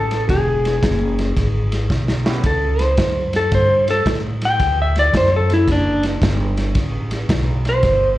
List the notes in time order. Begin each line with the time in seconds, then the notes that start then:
Already playing: A1 A4
0.11 snare, ride
0.29 E1 G#4, kick, snare, ride
0.65 snare, ride
0.83 F#1, kick, snare, ride
1.19 snare, ride
1.37 G#1, kick, snare, ride
1.72 snare, ride
1.90 B1, kick, snare
2.08 snare
2.25 A2 B3 C#4 E4 G4, snare
2.44 C#2 A4, kick, snare, ride
2.79 C5, snare, ride
2.97 F#2, kick, snare, ride
3.33 A4, snare, ride
3.52 G2 C5, kick, snare, ride
3.88 A4, snare, ride
4.06 A2, kick, snare, ride
4.41 G5, snare, ride
4.60 D2, kick, snare, ride
4.82 E5
4.96 D5, snare, ride
5.14 F#2 C5, kick, snare, ride
5.36 A4
5.50 E4, snare, ride
5.68 F#1, kick, snare, ride
5.72 D4
6.03 snare, ride
6.22 G1, kick, snare, ride
6.57 snare, ride
6.75 A1, kick, snare, ride
7.11 snare, ride
7.29 B1, kick, snare, ride
7.65 snare, ride
7.69 C5
7.83 G1, kick, snare, ride